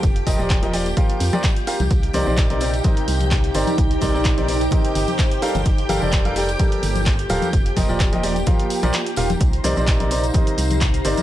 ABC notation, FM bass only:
X:1
M:4/4
L:1/16
Q:"Swing 16ths" 1/4=128
K:Cdor
V:1 name="FM bass" clef=bass
F,,,2 F,,, E,,,4- E,,, z2 F,, z4 C,, | C,,2 C,, B,,,4- B,,, z2 C,,4 G,,, z | C,,2 C,, B,,,4- B,,, z2 G,,, z4 G,,, | G,,,2 G,,, F,,,4- F,,, z2 G,,,4 D,,, z |
F,,,2 F,,, E,,,4- E,,, z3 B,,, z2 E,,,2 | C,,2 C,, B,,,4- B,,, z2 C,,4 G,,, z |]